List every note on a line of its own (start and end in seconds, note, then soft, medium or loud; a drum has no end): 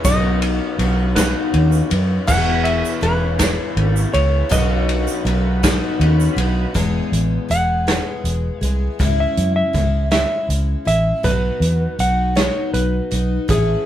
0.04 0.58 B1 medium
0.04 0.79 B2 medium
0.04 0.78 F#3 medium
0.04 2.26 B3 medium
0.04 0.79 B3 medium
0.04 2.25 D#4 medium
0.04 0.80 D#4 medium
0.04 2.26 F#4 medium
0.04 2.25 B4 medium
0.04 1.20 D#5 loud
0.04 kick loud
0.04 ride loud
0.04 shaker medium
0.08 0.81 F#4 medium
0.42 ride medium
0.79 1.33 B1 medium
0.79 1.16 F#3 medium
0.79 1.16 B3 medium
0.79 1.16 D#4 medium
0.79 1.15 F#4 medium
0.79 ride medium
1.16 1.92 B2 medium
1.16 1.92 F#3 medium
1.16 1.93 B3 medium
1.16 1.91 D#4 medium
1.16 1.89 F#4 medium
1.16 1.96 B4 medium
1.16 kick medium
1.16 snare loud
1.16 ride loud
1.16 shaker loud
1.54 1.81 D#2 medium
1.54 ride medium
1.72 shaker medium
1.90 2.18 F#2 medium
1.90 2.27 B3 soft
1.90 2.29 D#4 medium
1.90 2.28 F#4 medium
1.90 ride medium
2.27 2.82 E1 medium
2.27 3.02 E2 medium
2.27 3.02 B2 medium
2.27 3.00 E3 medium
2.27 4.49 B3 medium
2.27 3.02 B3 medium
2.27 4.49 E4 medium
2.27 3.02 E4 medium
2.27 4.50 G#4 medium
2.27 3.03 G#4 medium
2.27 4.49 B4 medium
2.27 2.66 F#5 loud
2.27 kick loud
2.27 crash loud
2.27 shaker medium
2.64 3.03 E5 medium
2.64 ride medium
2.85 shaker medium
3.01 3.56 E1 medium
3.01 3.39 E3 medium
3.01 3.38 B3 medium
3.01 3.38 E4 medium
3.01 3.38 G#4 medium
3.01 4.18 B4 medium
3.01 ride medium
3.39 4.15 E2 medium
3.39 4.15 B2 medium
3.39 4.15 E3 medium
3.39 4.15 B3 medium
3.39 4.13 E4 medium
3.39 4.12 G#4 medium
3.39 kick medium
3.39 snare loud
3.39 ride medium
3.39 shaker medium
3.77 4.04 G#1 loud
3.77 ride medium
3.96 shaker medium
4.13 4.41 C#2 medium
4.13 4.49 E3 soft
4.13 4.50 B3 soft
4.13 4.51 E4 medium
4.13 4.51 G#4 medium
4.13 4.52 C#5 loud
4.13 ride medium
4.49 5.05 B1 medium
4.49 5.25 B2 medium
4.49 5.24 F#3 medium
4.49 5.25 B3 medium
4.49 6.74 B3 medium
4.49 5.26 D#4 medium
4.49 6.73 D#4 medium
4.49 5.26 F#4 loud
4.49 6.74 F#4 medium
4.49 6.74 B4 medium
4.49 5.97 D#5 medium
4.49 kick loud
4.49 ride loud
4.49 shaker medium
4.89 ride medium
5.08 shaker medium
5.25 5.79 B1 medium
5.25 5.63 F#3 medium
5.25 5.63 B3 medium
5.25 5.62 D#4 medium
5.25 5.62 F#4 medium
5.25 ride medium
5.63 6.39 B2 medium
5.63 6.39 F#3 medium
5.63 6.38 B3 medium
5.63 6.37 D#4 medium
5.63 6.35 F#4 medium
5.63 kick medium
5.63 snare loud
5.63 ride medium
5.63 shaker medium
6.00 6.27 D#2 loud
6.00 ride medium
6.20 shaker medium
6.36 6.64 B1 medium
6.36 6.75 B3 medium
6.36 6.75 D#4 medium
6.36 6.75 F#4 medium
6.36 ride medium
6.74 7.00 E1 medium
6.74 7.50 E2 medium
6.74 7.50 B2 medium
6.74 7.48 E3 medium
6.74 7.49 G#3 medium
6.74 7.50 B3 medium
6.74 7.52 G#4 loud
6.74 kick loud
6.74 closed hi-hat loud
7.12 7.37 A1 medium
7.12 closed hi-hat medium
7.49 7.99 E1 medium
7.49 7.87 E3 medium
7.49 7.86 G#3 medium
7.49 7.86 B3 medium
7.49 7.86 G#4 medium
7.49 8.60 F#5 medium
7.49 closed hi-hat medium
7.87 8.63 E2 medium
7.87 8.63 B2 medium
7.87 8.63 E3 medium
7.87 8.62 G#3 medium
7.87 8.61 B3 medium
7.87 8.60 G#4 medium
7.87 snare loud
7.87 closed hi-hat medium
8.24 8.49 E1 medium
8.24 closed hi-hat medium
8.60 8.86 C2 medium
8.60 8.99 G#3 soft
8.60 9.00 B3 soft
8.60 8.99 G#4 medium
8.60 9.15 E5 medium
8.60 closed hi-hat medium
8.64 8.99 E3 soft
8.99 9.24 C#2 medium
8.99 9.75 C#3 medium
8.99 9.72 E3 medium
8.99 9.73 G#3 medium
8.99 9.74 C#4 medium
8.99 9.75 E4 medium
8.99 kick loud
8.99 closed hi-hat medium
9.20 9.55 E5 medium
9.37 9.62 F#2 medium
9.37 closed hi-hat medium
9.56 10.10 E5 medium
9.73 10.23 C#2 medium
9.73 10.12 E3 medium
9.73 10.11 G#3 medium
9.73 10.10 C#4 medium
9.73 10.10 E4 medium
9.73 kick medium
9.73 closed hi-hat medium
10.11 10.88 C#3 medium
10.11 10.88 E3 medium
10.11 10.87 G#3 medium
10.11 10.86 C#4 medium
10.11 10.84 E4 medium
10.11 10.48 E5 loud
10.11 snare loud
10.11 closed hi-hat medium
10.49 10.74 C#2 medium
10.49 closed hi-hat medium
10.85 11.11 A1 medium
10.85 11.24 G#3 soft
10.85 11.25 C#4 soft
10.85 11.24 E4 soft
10.85 11.24 E5 loud
10.85 closed hi-hat medium
11.23 11.49 B1 medium
11.23 11.99 B2 medium
11.23 11.98 F#3 medium
11.23 12.00 B3 medium
11.23 12.00 D#4 medium
11.23 12.00 F#4 medium
11.23 11.97 B4 loud
11.23 kick loud
11.23 closed hi-hat medium
11.60 11.85 E2 medium
11.60 closed hi-hat medium
11.99 12.48 B1 medium
11.99 12.36 F#3 medium
11.99 12.36 B3 medium
11.99 12.36 D#4 medium
11.99 12.34 F#4 medium
11.99 12.36 F#5 medium
11.99 closed hi-hat medium
12.35 13.13 B2 medium
12.35 13.13 F#3 medium
12.35 13.13 B3 medium
12.35 13.11 D#4 medium
12.35 13.10 F#4 medium
12.35 12.73 C#5 medium
12.35 snare loud
12.35 closed hi-hat medium
12.74 12.99 B1 medium
12.74 13.47 B4 medium
12.74 closed hi-hat medium
13.11 13.37 B1 medium
13.11 13.48 B3 soft
13.11 13.49 D#4 soft
13.11 13.49 F#4 soft
13.11 closed hi-hat medium
13.48 13.74 A1 medium
13.48 13.86 A2 medium
13.48 13.86 E3 medium
13.48 13.86 B3 medium
13.48 13.86 C#4 medium
13.48 13.86 E4 medium
13.48 13.86 G#4 medium
13.48 kick loud
13.48 closed hi-hat loud